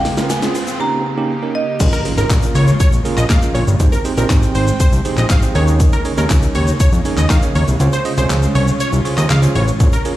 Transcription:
Already playing: C#3 C4 F4 G#4 G5, riser
0.05 snare, open hi-hat, shaker
0.17 C4 C#4 F4 A#4, snare, shaker
0.30 G#5, snare, closed hi-hat, shaker
0.42 C4 C#4 F4 G#4, snare, shaker
0.55 open hi-hat, shaker
0.67 shaker
0.80 C#3 A#3 C#4 D#4 G4 A#5
1.17 A#3 C#4 D#4 G4
1.42 A#3 C#4 D#4 A#4
1.55 D#5
1.80 A#1 C#3 G#3 A#3 C#4 F4 G#4 A#4, kick, closed hi-hat, crash, impact, shaker
1.92 A#4, shaker
2.05 A#3 C#4 F4 G#4 A#4, open hi-hat, shaker
2.17 G#1 A#3 C#4 F4 G#4 A#4, shaker
2.30 A#1, kick, snare, clap, closed hi-hat, shaker
2.42 shaker
2.55 C#2 C#5, open hi-hat, shaker
2.67 shaker
2.80 C#5, kick, closed hi-hat, shaker
2.92 A#1, shaker
3.05 A#3 C#4 F4 G#4 A#4, open hi-hat, shaker
3.17 A#1 D#5, clap, shaker
3.30 A#2 F5, kick, snare, clap, closed hi-hat, shaker
3.42 A#3 C#4 F4 G#4 A#4, shaker
3.54 A#1 C#5, open hi-hat, shaker
3.67 G1, shaker
3.80 G#1 D#3 C4 D#4 G4 G#4 C5 G5, kick, closed hi-hat, shaker
3.92 A#4, shaker
4.05 C4 D#4 G4 G#4 C5, open hi-hat, shaker
4.17 A#1 C4 D#4 G4 G#4 A#4 C5, shaker
4.30 G#1, kick, snare, clap, closed hi-hat, shaker
4.42 shaker
4.55 G#1 C5, open hi-hat, shaker
4.67 shaker
4.80 C5, kick, closed hi-hat, shaker
4.92 C2, shaker
5.05 C4 D#4 G4 G#4 C5, open hi-hat, shaker
5.17 A#1 D#5, clap, shaker
5.30 G#1 F5, kick, snare, clap, closed hi-hat, shaker
5.42 C4 D#4 G4 G#4 C5, shaker
5.55 D#2 C#3 A#3 C#4 D#4 G#4 A#4 C#5, open hi-hat, shaker
5.68 shaker
5.80 kick, closed hi-hat, shaker
5.93 A#4, shaker
6.05 C#4 D#4 G#4 A#4 C#5, open hi-hat, shaker
6.17 D#2 C#4 D#4 G#4 A#4 C#5, shaker
6.30 C#2, kick, snare, clap, closed hi-hat, shaker
6.42 shaker
6.55 D#2 C#5, open hi-hat, shaker
6.67 shaker
6.80 C#5, kick, closed hi-hat, shaker
6.92 F2, shaker
7.05 C#4 D#4 G#4 A#4 C#5, open hi-hat, shaker
7.17 D#2 D#5, clap, shaker
7.30 D#3 F5, kick, snare, clap, closed hi-hat, shaker
7.42 C#4 D#4 G#4 A#4 C#5, shaker
7.55 D#2 C#5, open hi-hat, shaker
7.68 C2, shaker
7.80 C#2 C#4 F4 G#4 C5 C#5, closed hi-hat, shaker
7.93 C5, shaker
8.05 C#4 F4 G#4 C5 D#5, open hi-hat, shaker
8.17 C2 C#4 F4 G#4 C5 C#5, shaker
8.30 C#2, snare, clap, closed hi-hat, shaker
8.42 shaker
8.55 C2 C#5, open hi-hat, shaker
8.67 shaker
8.80 C#5, closed hi-hat, shaker
8.92 C2, shaker
9.05 C#4 F4 G#4 C5 C#5, open hi-hat, shaker
9.18 D#2 D#5, clap, shaker
9.30 C#2 F5, snare, clap, closed hi-hat, shaker
9.42 C#4 F4 G#4 C5 C#5, shaker
9.55 A1 C#5, open hi-hat, shaker
9.68 shaker
9.80 A#1 C#3 G#3 A#3 C#4 F4 G#4 A#4 C#5, kick, closed hi-hat, shaker
9.93 A#4, shaker
10.05 C#4 F4 G#4 A#4 C#5, open hi-hat, shaker

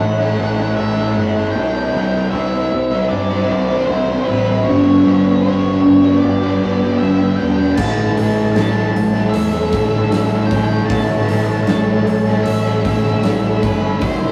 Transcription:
Already playing: A3 C#4 E4 C#5 A5 F#6
0.00 A1 A4 F#5, muted overdriven electric guitar stroke
0.19 A3 C#4 E4
0.38 A1 E3 A3 C#4 E4
0.58 A3 C#4 E4
0.76 A1 A2 E3 A3 C#4 A4 E5
0.80 E4
0.97 A3 C#4 E4
1.14 G1 E3 E4 F#5
1.18 A3 C#4 E4
1.36 A3 C#4 E4
1.52 C2 C3 C4 G5 B5 E6
1.56 E3 G3 C4 E4
1.94 C2 E3 G3 C4 E4
2.30 C2 C3 E3 G4 E5
2.35 G3 C4 E4
2.53 G3 C4 E4
2.71 C2 E4, muted overdriven electric guitar stroke
2.91 G3 C4 E4
3.09 G2 G4 D5, muted overdriven electric guitar stroke
3.29 G3 C4 E4
3.50 C2 E3 G3 C4 E4
3.69 G3 C4 E4
3.86 C2 C3 E3 G4 C5
3.90 G3 C4 E4
4.07 G3 C4 E4
4.25 A1 E3 G3 B4
4.30 C4 E4
4.46 G3 C4 E4
4.64 G2 D3 G3 B4 C#5 G5
4.68 G1 B3 D4 G4
5.04 G1 G3 B3 D4 G4
5.42 G1 G2 D3 G3 B3 C#5
5.46 D4 G4
5.65 G3 B3 D4 G4
5.83 G1 D4, muted overdriven electric guitar stroke
6.03 G3 B3 D4 G4
6.20 G4 D5
6.24 G1, muted overdriven electric guitar stroke
6.41 G3 B3 D4 G4
6.60 G3 B3 D4 G4
6.64 G1
6.80 G3 B3 D4 G4
6.98 G2 D3 G3 B3 D4 E5
7.03 G1 G4
7.19 G3 B3 D4 G4
7.36 G3 B3 G5
7.40 E1 D4 G4
7.58 G3 B3 D4 G4
7.75 A1 A2 E3 A3 C#5 A5 E6, kick, crash
7.79 C#4 A4
8.17 A1 E3 A3 C#4 A4, open hi-hat
8.52 A1 A2 E3 A5, snare, open hi-hat
8.57 A3 C#4 A4
8.77 A3 C#4 A4
8.95 A1 C#4, muted overdriven electric guitar stroke, open hi-hat
9.14 A3 C#4 A4
9.29 E5
9.33 E2 A4, muted overdriven electric guitar stroke, open hi-hat
9.53 A3 C#4 A4
9.72 A1 E3 A3 C#4 A4, kick, open hi-hat
9.92 A3 C#4 A4
10.11 A1 A2 E3 A3 C#4 A4, snare, open hi-hat
10.31 A3 C#4 A4
10.46 G5
10.50 A1 E3 A3 C#4 A4, kick, open hi-hat
10.70 A3 C#4 A4
10.86 A2 A5
10.90 A1 E3 A3 C#4 A4 B5, kick, open hi-hat
11.28 A1 E3 A3 C#4 A4, open hi-hat
11.63 A5, open hi-hat
11.68 A1 A2 E3 A3 C#4 A4, snare
11.87 A3 C#4 A4
12.07 A1 C#4, muted overdriven electric guitar stroke, open hi-hat
12.27 A3 C#4 A4
12.43 A1 A4 E5, muted overdriven electric guitar stroke, open hi-hat
12.64 A3 C#4 A4
12.84 A1 E3 A3 C#4 A4, kick, open hi-hat
13.03 A3 C#4 A4
13.23 A1 A2 E3 A3 C#4 A4, snare, open hi-hat
13.41 A3 C#4 A4
13.61 G1 E3 A3 C#4 B4, kick, open hi-hat
13.65 A4
13.81 A3 C#4 A4
13.99 C2 C3 E3 G3 E4 C5 E5, kick, open hi-hat
14.03 G4

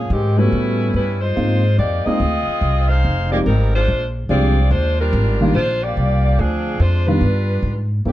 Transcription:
0.10 G#2 D#3 G#3 C4 G4
0.37 G3 A3 B3 C#4 E4 F#4 B4
0.52 A2
0.94 G2 G3 C#4 E4 B4
1.21 G#3 D#4 F4 C5
1.36 G#2 G#3 A#3 C4 D#4 F4
1.78 F2 A#3 D#4 G4 D5
2.05 G#3 A#3 C4 D#4 F4 G#4 D#5, muted upright bass stroke
2.20 D2
2.47 muted upright bass stroke
2.61 C2
2.89 D#4 G#4 C5 F5
3.05 F1
3.31 F3 G#3 A#3 C4 D#4 G4 D5
3.46 G#1 G3 C4 D#4 A#4
3.75 G#3 D4 F4 C5
3.88 A#1
4.29 C2 F3 G#3 C4 D4 F4 G4 G#4 D5
4.71 D#2 G#3 D4 F4 C5
5.00 G3 D4 F4 A#4
5.13 G#1
5.41 D#3 G3 A#3 D4 F4
5.54 A#1 G#3 D4 F4 C5
5.83 A#3 F4 G4 D5
5.97 C2
6.39 D2 F3 C4 D4 G#4
6.79 F2 G#3 D4 F4 C5
7.07 D#3 G3 B3 D4 F4 B4
7.21 G2
7.62 G#2
8.05 G2 F3 A#3 C4 D4 G4 A4

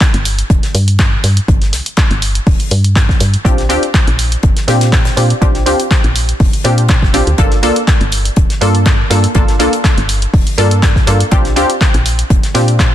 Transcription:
0.01 kick, snare, clap, closed hi-hat
0.14 G1, closed hi-hat
0.25 closed hi-hat, open hi-hat
0.39 closed hi-hat
0.50 D1, kick, closed hi-hat
0.63 snare, closed hi-hat
0.75 G2, closed hi-hat, open hi-hat
0.88 closed hi-hat
0.99 kick, snare, clap, closed hi-hat
1.24 G2, snare, closed hi-hat, open hi-hat
1.37 closed hi-hat
1.48 G1, kick, closed hi-hat
1.62 snare, closed hi-hat
1.73 C2, snare, closed hi-hat, open hi-hat
1.86 closed hi-hat
1.97 kick, snare, clap, closed hi-hat
2.11 G1, closed hi-hat
2.22 closed hi-hat, open hi-hat
2.35 closed hi-hat
2.47 D1, kick, open hi-hat
2.60 closed hi-hat
2.71 G2, closed hi-hat, open hi-hat
2.84 closed hi-hat
2.96 kick, snare, clap, closed hi-hat
3.09 kick, snare
3.20 G2, snare, closed hi-hat, open hi-hat
3.34 closed hi-hat
3.45 A#1 C4 D4 F4 G4, kick, closed hi-hat
3.58 snare, closed hi-hat
3.69 D2 C4 D4 F4 G4, closed hi-hat, open hi-hat
3.83 closed hi-hat
3.94 kick, snare, clap, closed hi-hat
4.07 A#1, closed hi-hat
4.19 closed hi-hat, open hi-hat
4.32 closed hi-hat
4.43 F1, kick, closed hi-hat
4.57 snare, closed hi-hat
4.68 A#2 C4 D4 F4 G4, snare, closed hi-hat, open hi-hat
4.81 snare, closed hi-hat
4.92 kick, snare, clap, closed hi-hat
5.05 snare, closed hi-hat
5.17 A#2 C4 D4 F4 G4, snare, closed hi-hat, open hi-hat
5.30 closed hi-hat
5.41 A#1 C4 D4 F4 G4, kick, closed hi-hat
5.55 snare, closed hi-hat
5.66 D2 C4 D4 F4 G4, snare, closed hi-hat, open hi-hat
5.79 closed hi-hat
5.91 kick, snare, clap, closed hi-hat
6.04 A#1, closed hi-hat
6.16 closed hi-hat, open hi-hat
6.29 closed hi-hat
6.40 F1, kick, open hi-hat
6.53 closed hi-hat
6.64 A#2 C4 D4 F4 G4, closed hi-hat, open hi-hat
6.78 closed hi-hat
6.89 kick, snare, clap, closed hi-hat
7.02 G1, kick, snare
7.13 A#1 C4 D4 F4 G4, snare, closed hi-hat, open hi-hat
7.27 D2, closed hi-hat
7.38 G1 A#3 D4 F4 A4, kick, closed hi-hat
7.51 snare, closed hi-hat
7.63 C2 A#3 D4 F4 A4, closed hi-hat, open hi-hat
7.76 closed hi-hat
7.87 kick, snare, clap, closed hi-hat
8.01 G1, closed hi-hat
8.12 closed hi-hat, open hi-hat
8.25 closed hi-hat
8.36 D1, kick, closed hi-hat
8.50 snare, closed hi-hat
8.61 G2 A#3 D4 F4 A4, closed hi-hat, open hi-hat
8.75 closed hi-hat
8.86 kick, snare, clap, closed hi-hat
9.10 G2 A#3 D4 F4 A4, snare, closed hi-hat, open hi-hat
9.24 closed hi-hat
9.35 G1 A#3 D4 F4 A4, kick, closed hi-hat
9.48 snare, closed hi-hat
9.59 C2 A#3 D4 F4 A4, snare, closed hi-hat, open hi-hat
9.73 closed hi-hat
9.84 kick, snare, clap, closed hi-hat
9.98 G1, closed hi-hat
10.09 closed hi-hat, open hi-hat
10.22 closed hi-hat
10.34 D1, kick, open hi-hat
10.47 closed hi-hat
10.58 G2 A#3 D4 F4 A4, closed hi-hat, open hi-hat
10.71 closed hi-hat
10.83 kick, snare, clap, closed hi-hat
10.96 kick, snare
11.07 G2 A#3 D4 F4 A4, snare, closed hi-hat, open hi-hat
11.20 closed hi-hat
11.31 A#1 C4 D4 F4 G4, kick, closed hi-hat
11.45 snare, closed hi-hat
11.56 D2 C4 D4 F4 G4, closed hi-hat, open hi-hat
11.70 closed hi-hat
11.81 kick, snare, clap, closed hi-hat
11.94 A#1, closed hi-hat
12.06 closed hi-hat, open hi-hat
12.19 closed hi-hat
12.30 F1, kick, closed hi-hat
12.43 snare, closed hi-hat
12.54 A#2 C4 D4 F4 G4, snare, closed hi-hat, open hi-hat
12.68 closed hi-hat
12.79 kick, snare, clap, closed hi-hat

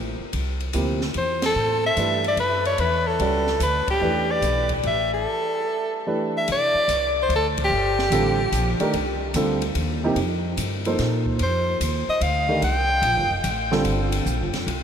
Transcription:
Already playing: A1 C3 F3 A#3 E4 G4
0.20 muted upright bass stroke
0.33 C2, ride
0.60 ride
0.73 D2 C3 F3 A#3 E4 G4, hi-hat pedal, ride
1.01 snare
1.14 E2 C5, ride
1.42 A4, snare, ride
1.56 A2
1.86 E5
1.97 G2 E3 A3 D4 G4 B4, hi-hat pedal, ride
2.24 D5, ride
2.37 F#2 B4, ride
2.65 C#5, ride
2.78 E2 B4, ride
3.07 A4
3.19 C#2 G3 C#4 F#4 B4 D5, ride
3.47 snare
3.60 D2 B4, hi-hat pedal, ride
3.87 G4, muted upright bass stroke, kick, ride
4.01 E2 E3 A3 D4 G4 B4
4.31 D5
4.42 B1, hi-hat pedal, ride
4.69 kick, ride
4.83 A1 E5, ride
5.13 A4
6.07 E3 A3 D4 G4 B4
6.37 E5
6.48 C3, ride
6.52 D5
6.75 muted upright bass stroke
6.88 C2, hi-hat pedal, ride
7.22 C5
7.29 D2, ride
7.36 A4
7.58 kick, ride
7.64 G4
7.70 G1
7.99 snare
8.10 A1 D3 G3 C4 F4 A4, hi-hat pedal, ride
8.52 A#1, hi-hat pedal, ride
8.80 D#3 A3 D4 G4 A#4, muted upright bass stroke, ride
8.93 C2, ride
9.34 D2 D3 G3 C4 F4 A4, hi-hat pedal, ride
9.62 ride
9.75 D#2, ride
10.04 C3 F3 A#3 D#4 G4
10.16 F2, ride
10.57 G2, hi-hat pedal, ride
10.85 F3 A#3 D#4 A4 C5, ride
10.99 A#2, snare, ride
11.26 kick
11.39 F2 C5, ride
11.80 D#2, hi-hat pedal, ride
12.08 D#5, muted upright bass stroke
12.21 D2 F5, ride
12.49 D#3 A3 D4 G4 A#4
12.62 C2 G5, ride
13.02 A#1, ride
13.16 G1
13.30 F1
13.44 A1, hi-hat pedal, ride
13.71 D3 G3 C4 F4 A4, snare
13.85 G1, ride
14.12 ride
14.26 A#1, hi-hat pedal
14.40 G1
14.53 F1, snare, ride
14.67 C2, ride

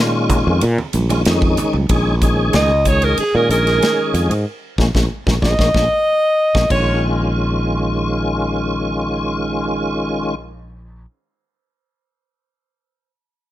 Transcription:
Already playing: A#2 D#3 G#3 C#4 F4
0.30 kick, hi-hat pedal, ride, low conga
0.47 F2
0.61 A#2, ride
0.78 low conga
0.93 A#1, hi-hat pedal, ride, high conga
1.09 D#3 G#3 C#4 F4, ride, high conga
1.25 F2 D#3 G#3 C#4 D#4, snare, ride
1.42 kick
1.57 hi-hat pedal, ride, low conga
1.73 C#2, high conga
1.89 A#1 D#3 G#3 C#4 G#4, kick, ride
2.22 D#3 G#3 C#4 G#4, kick, hi-hat pedal, ride
2.53 C#2 D#5, snare, ride
2.85 D#3 G#3 C#4 G#4 C#5, kick, hi-hat pedal, ride
3.02 A#4, ride
3.18 G#4, muted fretless electric bass stroke, ride
3.34 A#2 D#3 G#3 C#4 G#4 A#4
3.49 A#1 A#4, hi-hat pedal, ride
3.67 snare, ride
3.82 snare, ride
4.14 F2, hi-hat pedal, ride
4.30 G#2, ride
4.78 A#1 G#3 A#3 C#4, kick, snare
4.95 A#1 G#3 A#3 C#4, kick, snare
5.27 A#1 G#3 A#3 C#4, kick, snare
5.42 A#1 G#3 A#3 C#4 D#5, kick, snare
5.59 A#1 G#3 A#3 C#4, kick, snare
5.74 A#1 G#3 A#3 C#4, kick, snare
6.55 A#1 G#3 A#3 C#4, kick, snare
6.70 A#1 D#3 G#3 C#4 F4 C#5, kick, crash

